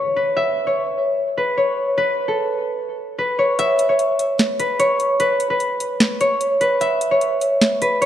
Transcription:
Already playing: harp B4 C#5, downlifter
0.16 harp B4
0.37 harp E5
0.67 harp C#5
1.38 harp B4
1.57 harp C#5
1.98 harp B4
2.28 harp A4
3.19 harp B4
3.39 harp C#5
3.59 harp E5, closed hi-hat
3.79 closed hi-hat
3.89 harp C#5
3.99 closed hi-hat
4.19 closed hi-hat
4.39 snare, closed hi-hat
4.60 harp B4, closed hi-hat
4.79 harp C#5, closed hi-hat
5.00 closed hi-hat
5.20 harp B4, closed hi-hat
5.40 closed hi-hat
5.50 harp B4
5.60 closed hi-hat
5.80 closed hi-hat
6.00 snare, closed hi-hat
6.21 harp C#5, closed hi-hat
6.41 closed hi-hat
6.61 harp B4, closed hi-hat
6.81 harp E5, closed hi-hat
7.01 closed hi-hat
7.11 harp C#5
7.21 closed hi-hat
7.41 closed hi-hat
7.61 snare, closed hi-hat
7.82 harp B4, closed hi-hat
8.02 harp C#5, closed hi-hat

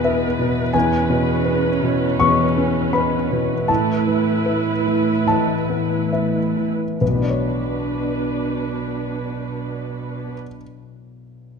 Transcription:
Already playing: grand piano E2 B2 B3 B4 G#5, harp E2 B2 B3 E4, cello section E2, viola section B3 B4
0.04 grand piano B4 E5, harp B4
0.39 grand piano B2, harp E4
0.73 grand piano E2 G#5, harp E2, viola section C#4
1.10 grand piano B2, harp C#4
1.45 harp B4, grand piano B4
1.82 grand piano B2, harp E4
2.20 harp E2, grand piano E2 C#6
2.57 grand piano C#4, harp C#4
2.93 harp B4, grand piano B4 B5
3.30 grand piano B2, harp E4
3.68 harp A2, grand piano A2 A5, cello section A2, viola section E4 B4
4.07 grand piano E3, harp B3
4.46 grand piano B4, harp B4
4.85 grand piano E3, harp E4
5.26 grand piano A2 A5, harp E3
5.69 harp B3, grand piano B3
6.12 harp B4, grand piano B4 E5
6.57 grand piano E3, harp E4
7.01 grand piano B1 B4, harp B2, cello section B2, viola section D4 B4
7.08 grand piano B2, harp B3
7.15 grand piano B3, harp D4
7.22 grand piano D4, harp C#5
7.30 grand piano C#5

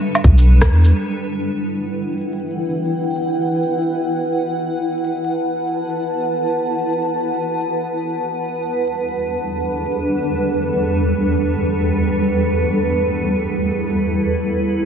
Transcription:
Already playing: ambient pad G3 D4 A4 B4
0.15 low woodblock, shaker
0.24 808-style bass B1, kick
0.38 shaker
0.62 kick, cross-stick, shaker
0.70 808-style bass E2
0.85 shaker
0.94 ambient pad E4
1.24 ambient pad B4 F#5
1.64 ambient pad G5
4.69 ambient pad A5
8.38 ambient pad E2
8.60 ambient pad G3
8.84 ambient pad D4
9.02 ambient pad A4
12.90 ambient pad E4

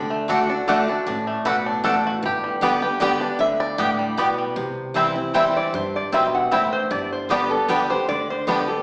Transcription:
Already playing: upright bass D2, steel-string acoustic guitar D3, five-string banjo D4
0.10 five-string banjo A3
0.28 steel-string acoustic guitar D3 A3 D4 F#4, mandolin A3 F#4 D5 F#5, five-string banjo D4
0.49 five-string banjo D4, steel-string acoustic guitar D4 F#4
0.68 steel-string acoustic guitar D3 A3 D4 F#4, mandolin A3 F#4 D5 F#5, five-string banjo A3
0.88 five-string banjo D4, steel-string acoustic guitar D4 F#4
1.07 upright bass A1, steel-string acoustic guitar A2, five-string banjo D4
1.27 five-string banjo A3
1.45 upright bass B1, steel-string acoustic guitar B2, mandolin A3 F#4 D5 F#5, five-string banjo B4
1.66 five-string banjo D4
1.84 upright bass A1, steel-string acoustic guitar A2, mandolin A3 F#4 D5 F#5, five-string banjo A4
2.07 five-string banjo F#4
2.23 upright bass G1, steel-string acoustic guitar G2, five-string banjo G4
2.44 five-string banjo G3
2.61 steel-string acoustic guitar D3 G3 B3 G4, mandolin B3 G4 D5 G5, five-string banjo B4
2.82 steel-string acoustic guitar B3 G4, five-string banjo G4
3.00 steel-string acoustic guitar D3 G3 B3 G4, five-string banjo G3, mandolin B3 G4 D5 G5
3.21 steel-string acoustic guitar B3 G4, five-string banjo D4
3.39 upright bass D2, steel-string acoustic guitar D3, five-string banjo E5
3.60 five-string banjo D5
3.78 steel-string acoustic guitar A2, mandolin B3 G4 D5 G5, five-string banjo G4
3.99 five-string banjo G3
4.17 steel-string acoustic guitar B2, mandolin B3 G4 D5 G5, five-string banjo B4
4.38 five-string banjo G3
4.56 upright bass C2, steel-string acoustic guitar C3
4.94 steel-string acoustic guitar E3 G3 C4 E4, five-string banjo G3 C4 E4, mandolin C4 E4 C5 G5
5.16 steel-string acoustic guitar C4 E4
5.34 steel-string acoustic guitar E3 G3 C4 E4, five-string banjo G3 C4 E4, mandolin C4 E4 C5 G5, resonator guitar played with a steel bar E5
5.57 resonator guitar played with a steel bar D5
5.74 upright bass G2, steel-string acoustic guitar G2, resonator guitar played with a steel bar C5
5.96 resonator guitar played with a steel bar D5
6.12 upright bass B1, steel-string acoustic guitar B2, five-string banjo G3 C4 E4, mandolin C4 E4 C5 G5, resonator guitar played with a steel bar E5
6.35 resonator guitar played with a steel bar F#5
6.51 upright bass A1, steel-string acoustic guitar A2, five-string banjo G3 C4 E4, mandolin C4 E4 C5 G5, resonator guitar played with a steel bar E5
6.73 resonator guitar played with a steel bar C5
6.91 upright bass G1, steel-string acoustic guitar G2, resonator guitar played with a steel bar D5
7.12 resonator guitar played with a steel bar C5
7.29 steel-string acoustic guitar D3 G3 B3 G4, five-string banjo G3 B3 D4, mandolin B3 G4 D5 G5, resonator guitar played with a steel bar B4
7.49 steel-string acoustic guitar B3 G4, resonator guitar played with a steel bar A4
7.68 steel-string acoustic guitar D3 G3 B3 G4, five-string banjo G3 B3 D4, mandolin B3 G4 D5 G5, resonator guitar played with a steel bar B4
7.90 steel-string acoustic guitar B3 G4, resonator guitar played with a steel bar C5
8.08 upright bass D2, steel-string acoustic guitar D3, resonator guitar played with a steel bar D5
8.30 resonator guitar played with a steel bar C5
8.47 steel-string acoustic guitar D3 G3 B3 G4, five-string banjo G3 B3 D4, mandolin B3 G4 D5 G5, resonator guitar played with a steel bar B4
8.68 steel-string acoustic guitar B3 G4, resonator guitar played with a steel bar A4

